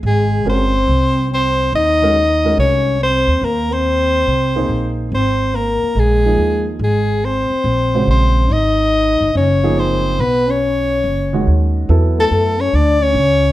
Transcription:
0.03 G#1 G#3 G#4
0.45 G1 G#3 C4 C#4 F#4 A#4
0.49 C5
0.88 C2
1.31 C4 C5
1.73 D#2 D#4 D#5
2.02 G#3 C#4 F#4 A#4
2.45 G#3 C#4 F#4 A#4
2.57 C2 C#4 C#5
3.01 C4 C5
3.27 D#2
3.42 D#2 A#3 A#4
3.71 C4 C5
4.27 C2
4.55 A#3 D#4 G#4 C5
4.69 A#1
5.11 G#1 C4 C5
5.54 A#3 A#4
5.83 muted upright bass stroke
5.95 A#1 G#3
6.00 G#4
6.25 F3 A#3 D#4 G#4
6.38 D#2
6.79 G#1 G#3
6.84 G#4
7.24 C4 C5
7.50 muted upright bass stroke
7.64 A#1
7.94 C#3 G#3 F#4 C5
8.07 A#1 C4 C5
8.50 G#1 D#4 D#5
9.21 G1
9.34 F#1 C#4 C#5
9.63 F3 A#3 D#4 G#4
9.76 C4 C5
10.19 B1 B3 B4
10.48 C#4 C#5
11.04 F#1
11.33 D#3 G#3 C#4 F#4
11.47 D#2
11.89 E2 F#3 B3 E4 A4
12.18 A3 A4
12.31 F#2
12.59 C#4 C#5
12.72 D2 D4 D5
13.02 C#4 C#5
13.15 C#2

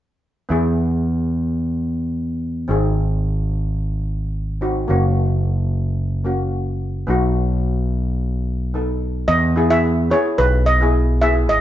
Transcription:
0.49 E2 B3 E4 G#4
2.68 G#1 C4 D#4 G#4
4.61 C4 D#4 F#4
4.88 F#1 A#3 C#4 F#4
6.24 A#3 C#4 F#4
7.07 B1 B3 D#4 F#4
8.74 B3 D#4 A4
9.28 E2 D#5
9.56 B3 E4 G#4
9.70 B3 E4 G#4 E5
10.10 B3 E4 G#4 C#5
10.38 B1 B4
10.66 D#5
10.81 B3 E4 G#4
11.21 B3 E4 G#4 E5
11.49 G#1 D#5

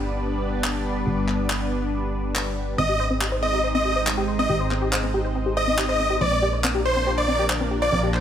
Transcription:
Already playing: G1 G3 B3 D4 B4 D5
0.64 clap
1.07 G1
1.28 clap
1.50 clap
2.35 clap
2.78 G#1 G#3 C4 D#4 C5 D#5
2.89 G4
3.00 C5
3.10 C4
3.21 G4, clap
3.32 C5
3.42 C4 D#5
3.53 G4
3.64 C5
3.75 C4 D#5
3.85 G4
3.96 C5
4.07 C4, clap
4.17 G4
4.28 C5
4.39 C4 D#5
4.50 G#1 G4
4.60 C5
4.71 C4, clap
4.82 G4
4.92 C5, clap
5.03 C4
5.14 G4
5.25 C5
5.35 C4
5.46 G4
5.57 C5 D#5
5.67 C4
5.78 G4, clap
5.89 C5 D#5
6.00 C4
6.10 G4
6.21 A#1 F3 A#3 D4 A#4 C5 D5
6.32 C4
6.42 G4
6.53 C5
6.64 C4, clap
6.75 G4
6.85 C5
6.96 C4
7.07 G4
7.18 C5 D5
7.28 C4
7.39 G4
7.50 C5, clap
7.60 C4
7.71 G4
7.82 C5 D5
7.92 A#1 C4
8.03 G4
8.14 C5, clap

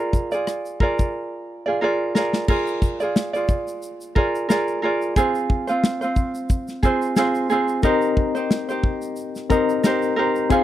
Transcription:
Already playing: F4 G#4 A#4 D5
0.13 kick, shaker
0.32 F4 G#4 D5, shaker
0.47 cross-stick, shaker
0.66 shaker
0.80 F4 G#4 A#4 D5, kick
0.99 kick, shaker
1.66 F4 G#4 D5
1.81 F4 G#4 A#4 D5
2.15 F4 G#4 A#4 D5, snare
2.33 snare
2.48 F4 G#4 A#4 D5, kick, crash
2.67 shaker
2.82 kick, shaker
3.00 F4 G#4 D5, shaker
3.16 snare, shaker
3.33 F4 G#4 D5, shaker
3.48 kick, shaker
3.68 shaker
3.83 shaker
4.01 shaker
4.15 F4 G#4 A#4 D5, kick
4.35 shaker
4.49 F4 G#4 A#4 D5, snare, shaker
4.68 shaker
4.82 F4 G#4 A#4 D5
5.02 shaker
5.16 C4 F4 G#4 C5, kick, shaker
5.35 shaker
5.50 kick
5.67 C4 F4 C5, shaker
5.84 snare, shaker
6.01 C4 F4 C5, shaker
6.16 kick, shaker
6.35 shaker
6.49 kick, shaker
6.68 snare, shaker
6.83 C4 F4 G#4 C5, kick, shaker
7.02 shaker
7.16 C4 F4 G#4 C5, snare, shaker
7.35 shaker
7.50 C4 F4 G#4 C5, shaker
7.68 shaker
7.83 C4 D#4 G4 A#4 C5 D#5, kick, shaker
8.02 shaker
8.17 kick
8.35 D#4 G4 C5, shaker
8.51 snare, shaker
8.69 D#4 G4 C5, shaker
8.83 kick
9.02 shaker
9.16 shaker
9.35 snare, shaker
9.50 C4 D#4 G4 A#4 C5 D#5, kick, shaker
9.69 shaker
9.83 D#4 G4 A#4 C5, snare, shaker
10.02 shaker
10.16 D#4 G4 A#4 C5
10.35 shaker
10.50 C4 D#4 F4 G#4 C5 F5, kick, shaker

